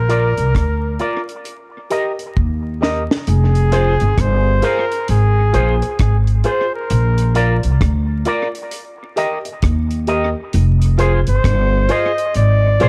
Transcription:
Already playing: A#1 A#4
0.09 F4 A#4 D5, closed hi-hat
0.37 C2, closed hi-hat
0.55 D2, kick, cross-stick, closed hi-hat
0.99 F4 A#4 D5, closed hi-hat
1.29 closed hi-hat
1.45 closed hi-hat
1.90 G4 A#4 D#5, closed hi-hat
2.19 A#4 D#5, closed hi-hat
2.37 D#2, kick
2.81 G4 A#4 D#5, snare
3.11 snare
3.27 F1 G#4, closed hi-hat
3.55 closed hi-hat
3.72 F4 G#4 C5, closed hi-hat
4.00 G1, closed hi-hat
4.18 G1 C5, kick, cross-stick, closed hi-hat
4.62 F4 G#4 A#4 C5, closed hi-hat
4.92 closed hi-hat
5.08 G#1 G#4, closed hi-hat
5.53 A#1 F4 G#4 C5, closed hi-hat
5.82 G#4 C5, muted clean electric guitar stroke, closed hi-hat
5.99 G#1 G#4, kick, cross-stick, closed hi-hat
6.27 closed hi-hat
6.44 F4 G#4 C5, closed hi-hat
6.75 A#4
6.90 A#1, closed hi-hat
7.18 closed hi-hat
7.35 F4 A#4 D5, closed hi-hat
7.63 C2, closed hi-hat
7.81 D2, kick, cross-stick, closed hi-hat
8.25 F4 A#4 D5, closed hi-hat
8.55 closed hi-hat
8.71 closed hi-hat
9.16 G4 A#4 D#5, closed hi-hat
9.45 A#4 D#5, closed hi-hat
9.62 D#2, kick, cross-stick, closed hi-hat
9.91 closed hi-hat
10.07 G4 A#4 D#5, closed hi-hat
10.53 F1, closed hi-hat
10.82 closed hi-hat
10.98 F4 G#4 C5, closed hi-hat
11.27 G1 C5, closed hi-hat
11.44 G1, kick, cross-stick, closed hi-hat
11.88 F4 G#4 C5 D#5, closed hi-hat
12.18 closed hi-hat
12.34 G#1 D5, closed hi-hat
12.80 A#1 F4 G#4 C5, closed hi-hat

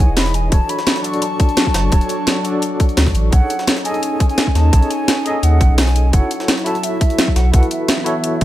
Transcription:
Already playing: E3 D#4 E4 G#4 B4 C#5 D#5
0.00 G#5
0.08 E1
0.17 B5, snare, closed hi-hat, open hi-hat
0.26 snare
0.34 G#5, closed hi-hat
0.50 D1 F#3 D4 F#4 A4 C#5 A5 C#6, kick, closed hi-hat
0.69 B5, closed hi-hat
0.79 snare
0.87 snare, closed hi-hat
0.96 snare
1.03 D4 F#4 A4 D5 C#6, closed hi-hat
1.13 closed hi-hat
1.22 A5, closed hi-hat
1.40 kick, closed hi-hat
1.49 closed hi-hat
1.57 snare, closed hi-hat
1.67 kick
1.74 F#1, snare, closed hi-hat
1.91 D1 D4 F#4 A4 C#5, kick, closed hi-hat
2.01 closed hi-hat
2.09 closed hi-hat
2.27 snare, closed hi-hat
2.43 D4 F#4 A4 D5, closed hi-hat
2.62 closed hi-hat
2.80 kick, closed hi-hat
2.89 closed hi-hat
2.97 D2, snare, closed hi-hat, open hi-hat
3.06 kick, snare
3.15 A1, closed hi-hat
3.31 B1 C#4 D#4 G#4 A4 C#5 F#5, kick, closed hi-hat
3.50 closed hi-hat
3.59 snare
3.67 snare, closed hi-hat
3.77 snare
3.83 D#4 G#4 A4 D#5 G#5, closed hi-hat
3.94 closed hi-hat
4.03 closed hi-hat
4.20 kick, closed hi-hat
4.29 G#5, closed hi-hat
4.38 snare, closed hi-hat
4.47 kick
4.55 D#2 A5, snare, closed hi-hat
4.71 B1 D#4 G#4 A4 C#5, kick, closed hi-hat
4.82 closed hi-hat
4.91 G#5, closed hi-hat
5.08 snare, closed hi-hat
5.24 D#4 G#4 A4 D#5, closed hi-hat
5.43 D#2 F#5, closed hi-hat
5.61 A1, kick, closed hi-hat
5.70 B1
5.78 G#5, snare, closed hi-hat, open hi-hat
5.87 snare
5.96 closed hi-hat
6.12 F#1 F#3 E4 F#4 A4 C#5 F#5, kick, closed hi-hat
6.31 closed hi-hat
6.40 snare
6.48 snare, closed hi-hat
6.58 snare
6.64 E4 F#4 A4 E5 A5, closed hi-hat
6.75 closed hi-hat
6.83 E5, closed hi-hat
7.01 kick, closed hi-hat
7.10 closed hi-hat
7.19 snare, closed hi-hat
7.28 kick
7.36 B1 F#5, snare, closed hi-hat
7.52 B1 E3 B3 E4 F#4 A4 B4 F#5, kick, closed hi-hat
7.63 closed hi-hat
7.71 E5, closed hi-hat
7.88 snare, closed hi-hat
7.98 snare
8.04 E4 F#4 A4 C#5, closed hi-hat
8.24 closed hi-hat
8.41 F#1, kick, closed hi-hat

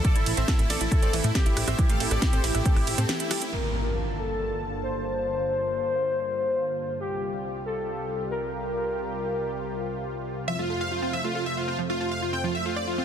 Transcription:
Already playing: E4
0.05 A3 C4 A4 D5, kick, closed hi-hat
0.15 A1 E4, closed hi-hat
0.26 A1 E4, open hi-hat, ride
0.37 A1 C4 C5 E5, closed hi-hat
0.48 E3 E4, kick, snare, closed hi-hat
0.59 A1 A3 E4, closed hi-hat
0.70 A1 A4 D5, snare, open hi-hat, ride
0.80 A1 E4, closed hi-hat
0.92 E4, kick, closed hi-hat
1.02 A1 C4 A4 D5, closed hi-hat
1.13 A1 E3 E4, open hi-hat, ride
1.24 A2 A3 E4, closed hi-hat
1.35 G4 A4, kick, snare, closed hi-hat
1.46 A1 E4, closed hi-hat
1.57 A1 E4, cross-stick, open hi-hat, ride
1.67 A1 C4 C5 E5, cross-stick, closed hi-hat
1.78 E3 E4, kick, closed hi-hat
1.89 A1 A3 A4 F5, closed hi-hat
2.00 A1 E4 A4, open hi-hat, ride
2.11 A1 E4 A4 D5, cross-stick, closed hi-hat
2.22 E4, kick, snare, closed hi-hat
2.33 A1 C4 A4 C5, closed hi-hat
2.44 A1 E3 E4, open hi-hat, ride
2.55 A1 A3 E4, cross-stick, closed hi-hat
2.65 C4 A4, kick, closed hi-hat
2.76 A1 E4, cross-stick, open hi-hat
2.87 A1 E4, open hi-hat, ride
2.98 A2 C4 A4, closed hi-hat
3.09 E3 E4, snare, closed hi-hat
3.20 A3 E4, closed hi-hat
3.31 E4 G4 A4, cross-stick, open hi-hat, ride
3.42 E4, closed hi-hat
3.52 G2 D3 A#3 F4 A#4 A5, impact
4.17 A4
4.83 C5
7.00 C2 C3 G3 G4
7.66 A4
8.31 A#4
10.48 F2 F3 A3 C5 E5
10.59 A3 F4
10.70 F4 A4
10.81 F4 F5
10.91 F4
11.02 C4 F4
11.13 F3 E5
11.24 A3 F4
11.35 F4 A4
11.46 F4 E5
11.57 F4
11.68 C4 F4
11.79 F3
11.89 A3 F4
12.00 F4 A4
12.11 F4 F5
12.22 F4
12.33 C4 G5
12.44 F3 F4
12.55 A3 E5
12.65 F4 A4
12.76 F4 D5
12.87 F4
12.98 C4 F4

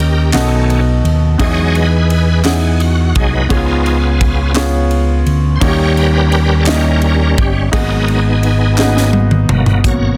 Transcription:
Already playing: D#2 D#3 C#4 D#4 G4 A#4 D#5
0.00 ride
0.33 B1 B2 D#3 A3 B3 C#4 D#4 F#4 A4 D#5, snare, clap, ride
0.70 ride
1.04 D#2, ride
1.38 E2 E3 F#3 G#3 B3 D#4 E4 G#4 C#5 D#5, kick, ride
1.75 B4, ride
2.10 B4, ride
2.44 B3 D#4 E4 G#4 F#5, snare, clap, ride
2.80 F#4, ride
3.15 C2 F#3 G#3 D#4 G#4, kick, ride
3.34 B4
3.49 C#2 C#3 F3 B3 C#4 D#4 F4 G#4 C#5, kick, ride
3.86 ride
4.21 kick, ride
4.54 B3 C#4 F4 G#4 C#5, snare, clap, ride
4.91 ride
5.26 D2, ride
5.56 C5
5.60 D#2 D#3 G3 A#3 C#4 D#4 F#4 G4 A#4 C#5, kick, ride
5.68 G4
5.97 B4, ride
6.32 B4, ride
6.60 A4
6.65 A#3 C#4 D#4 E4 D#5, snare, clap, ride
6.70 G4 A#4
7.02 A#4, ride
7.38 G1 G4, kick, ride
7.72 G#1 G#2 F#3 A#3 B3 D#4 F#4 G#4 A#4 D#5, kick, ride
7.78 B3
8.08 ride
8.43 ride
8.78 A#3 D#4 F#4 G#4 D#5, snare, clap
8.84 B3
8.97 snare
9.13 high tom
9.31 mid tom
9.49 G1 F#3 A#3 B3, mid tom
9.66 floor tom
9.84 G#1 B2 F#3 A#3 B3 C#4 F#4 A#4 C#5, kick, closed hi-hat

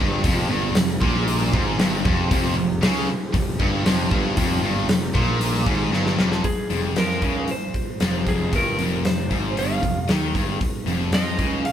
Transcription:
Already playing: F3 C4 G4
0.00 G1 G2
0.24 F1 F2, kick, open hi-hat
0.49 G1 G2
0.75 F1 F2, snare, open hi-hat
1.01 A#1 A#2, kick
1.28 open hi-hat
1.53 G#1 G#2, kick
1.78 G1 G2, snare, open hi-hat
2.05 F1 F2, kick
2.31 F1 F2, kick, open hi-hat
2.56 F1 F2
2.82 C#2 C#3, snare, open hi-hat
3.08 muted picked electric bass stroke, muted distorted electric guitar stroke
3.34 F1 F2, kick, open hi-hat
3.59 G1 G2, kick
3.85 F1 F2, snare, open hi-hat
4.11 G1 G2, kick
4.37 F1 F2, kick, open hi-hat
4.63 G1 G2
4.88 F1 F2, snare, open hi-hat
5.15 A#1 A#2, kick
5.41 open hi-hat
5.66 G#1 G#2, kick
5.92 G1 G2, snare
6.06 snare
6.19 F1 F2, snare
6.32 snare
6.44 G#4, muted picked electric bass stroke, muted distorted electric guitar stroke, kick, open hi-hat
6.70 F1 F2, open hi-hat
6.96 F2 F3 A#4, snare, open hi-hat
7.10 snare
7.22 C#2 C#3, kick, open hi-hat
7.48 C5, open hi-hat
7.74 kick, open hi-hat
8.00 F1 F2, snare, open hi-hat
8.27 G#4, kick, open hi-hat
8.53 G1 G2 A#4, kick, open hi-hat
8.78 F1 F2, open hi-hat
9.05 F1 F2 C5, snare, open hi-hat
9.31 G#1 G#2, kick, open hi-hat
9.57 G1 G2 F5, open hi-hat
9.82 F1 F2, kick, open hi-hat
10.08 D#2 D#3, snare, open hi-hat
10.34 G1 G2, kick, snare, open hi-hat
10.60 muted distorted electric guitar stroke, muted picked electric bass stroke, kick, open hi-hat
10.86 F1 F2, open hi-hat
11.12 F2 F3 D#5, snare, open hi-hat
11.38 C#2 C#3, kick, open hi-hat
11.65 F5, open hi-hat

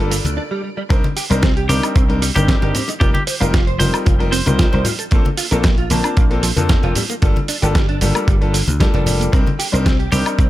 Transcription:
Already playing: G1 D5
0.00 F4 A4
0.11 A#3, open hi-hat, shaker
0.25 D2, closed hi-hat, high conga, shaker
0.37 D4
0.51 G3
0.63 G3
0.77 G3
0.89 C2 G3 C4 D4 D#4 A#4, kick, closed hi-hat, shaker
1.04 closed hi-hat, high bongo, high conga
1.17 G4, open hi-hat, shaker
1.30 C2 G3 C4 D4 D#4 A#4 C5, closed hi-hat, shaker
1.43 C4, kick, snare, closed hi-hat, shaker
1.57 G4, closed hi-hat
1.68 C2 G3 C4 D4 D#4 G4 A#4, open hi-hat, high conga, shaker
1.83 D#4, closed hi-hat, high woodblock, shaker
1.95 C2 C4, kick, closed hi-hat, shaker
2.09 G3 C4 D4 D#4 A#4, closed hi-hat
2.22 G3, open hi-hat, shaker
2.35 G1 G3 C4 D4 D#4 G4 A#4, closed hi-hat, high bongo, high conga, shaker
2.48 C4, kick, snare, closed hi-hat, shaker
2.61 G1 G3 C4 D4 D#4 G4 A#4, closed hi-hat, high bongo
2.75 C4, open hi-hat, low conga, shaker
2.88 D#4, closed hi-hat, high bongo, shaker
3.00 F1 G3 C4 D#4 F4 G4 A#4, kick, closed hi-hat, shaker
3.14 G4, closed hi-hat, high bongo, high conga
3.27 C5, open hi-hat, shaker
3.40 F1 G3 C4 D#4 F4 A#4 F5, closed hi-hat, shaker
3.53 F4, kick, snare, closed hi-hat, shaker
3.67 C5, closed hi-hat
3.79 F1 G3 C4 D#4 F4 A#4 C5, open hi-hat, high conga, shaker
3.93 A4, closed hi-hat, high woodblock, shaker
4.06 F1 F4, kick, closed hi-hat, shaker
4.19 G3 C4 D#4 F4 A#4, closed hi-hat
4.32 C4 C5, open hi-hat, shaker
4.46 C2 G3 C4 D#4 F4 A#4, closed hi-hat, high conga, shaker
4.59 F4, kick, snare, closed hi-hat, shaker
4.72 C2 G3 C4 D#4 F4 A#4 C5, closed hi-hat, high bongo
4.85 F4, open hi-hat, low conga, shaker
4.99 A4, closed hi-hat, shaker
5.11 A#1 A#3 C4 D4 F4 A4, kick, closed hi-hat, shaker
5.25 closed hi-hat, high bongo, high conga
5.37 F4, open hi-hat, shaker
5.51 A#1 A#3 C4 D4 F4 A4 A#4, closed hi-hat, shaker
5.64 A#3, kick, snare, closed hi-hat, shaker
5.78 F4, closed hi-hat
5.90 A#1 A#3 C4 D4 F4 A5, open hi-hat, high conga, shaker
6.04 D4, closed hi-hat, high woodblock, shaker
6.17 A#1 A#3, kick, closed hi-hat, shaker
6.30 A#3 C4 D4 F4 A4, closed hi-hat
6.43 F3, open hi-hat, shaker
6.56 F2 A#3 C4 D4 F4 A4, closed hi-hat, high bongo, high conga, shaker
6.69 A#3, kick, snare, closed hi-hat, shaker
6.83 F1 A#3 C4 D4 F4 A4, closed hi-hat, high bongo
6.95 G3, open hi-hat, low conga, shaker
7.10 A#3, closed hi-hat, high bongo, shaker
7.22 G1 G3 A#3 D4 F4 A4, kick, closed hi-hat, shaker
7.36 closed hi-hat, high bongo, high conga
7.48 D4, open hi-hat, shaker
7.62 G1 G3 A#3 D4 F4 G4 A4, closed hi-hat, shaker
7.75 G3, kick, snare, closed hi-hat, shaker
7.89 D4, closed hi-hat
8.01 G1 G3 A#3 D4 F4 A4, open hi-hat, high conga, shaker
8.15 A#3, closed hi-hat, high woodblock, shaker
8.27 G1 G3, kick, closed hi-hat, shaker
8.41 G3 A#3 D4 F4 A4, closed hi-hat
8.54 D3, open hi-hat, shaker
8.68 D2, closed hi-hat, high conga, shaker
8.80 G3 A#3 D4 F4 A4, kick, snare, closed hi-hat, shaker
8.93 F1 G3 A#3 D4 F4 A4, closed hi-hat, high bongo
9.06 G3, open hi-hat, low conga, shaker
9.20 A#3, closed hi-hat, shaker
9.32 C2 G3 C4 D4 D#4 A#4, kick, closed hi-hat, shaker
9.46 closed hi-hat, high bongo, high conga
9.59 G4, open hi-hat, shaker
9.72 C2 G3 C4 D4 D#4 A#4 C5, closed hi-hat, shaker
9.85 C4, kick, snare, closed hi-hat, shaker
9.99 G4, closed hi-hat
10.11 C2 G3 C4 D4 D#4 G4 A#4, open hi-hat, high conga, shaker
10.26 D#4, closed hi-hat, high woodblock, shaker
10.39 C2 C4, kick, closed hi-hat, shaker

